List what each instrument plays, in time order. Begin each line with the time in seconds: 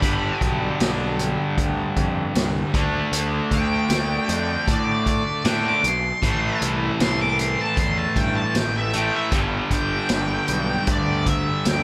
Already playing: lead electric guitar B5
0.02 picked electric bass G1, distorted electric guitar G2 D3 G3, kick, closed hi-hat
0.41 picked electric bass B1, kick, closed hi-hat
0.80 picked electric bass B1, snare, closed hi-hat
1.19 closed hi-hat
1.58 picked electric bass D2, kick, closed hi-hat
1.96 picked electric bass F2, kick, closed hi-hat
2.35 picked electric bass C2, snare, closed hi-hat
2.73 picked electric bass D2, distorted electric guitar D3 A3 D4, kick, closed hi-hat
3.12 picked electric bass D2, closed hi-hat
3.51 picked electric bass D2, lead electric guitar G5, kick, closed hi-hat
3.90 picked electric bass D2, snare, closed hi-hat
4.29 picked electric bass F2, closed hi-hat
4.68 picked electric bass A2, lead electric guitar D5, kick, closed hi-hat
5.06 lead electric guitar D5, kick, closed hi-hat
5.45 picked electric bass A2, distorted electric guitar D3 A3 D4, lead electric guitar G5, snare, closed hi-hat
5.68 lead electric guitar D6
5.84 picked electric bass B1, closed hi-hat
5.88 lead electric guitar C6
6.22 picked electric bass A1, distorted electric guitar A2 E3 A3, kick, closed hi-hat
6.62 picked electric bass C2, closed hi-hat
7.00 picked electric bass C2, lead electric guitar C6, snare, closed hi-hat
7.21 lead electric guitar D6
7.39 lead electric guitar C6, closed hi-hat
7.61 lead electric guitar A5
7.77 picked electric bass E2, lead electric guitar C6, kick, closed hi-hat
7.98 lead electric guitar A5
8.16 picked electric bass G2, lead electric guitar G5, kick, closed hi-hat
8.37 lead electric guitar A5
8.55 picked electric bass A1, lead electric guitar G5, snare, closed hi-hat
8.77 lead electric guitar E5
8.93 distorted electric guitar A2 E3 A3, lead electric guitar G5, closed hi-hat
9.16 lead electric guitar E5
9.31 picked electric bass G1, distorted electric guitar G2 D3 G3, kick, closed hi-hat
9.71 picked electric bass G1, lead electric guitar G5, kick, closed hi-hat
10.09 picked electric bass G1, snare, closed hi-hat
10.48 picked electric bass B1, closed hi-hat
10.87 picked electric bass D2, kick, closed hi-hat
10.91 lead electric guitar D5
11.26 lead electric guitar E5, kick, closed hi-hat
11.65 picked electric bass D2, lead electric guitar G5, snare, closed hi-hat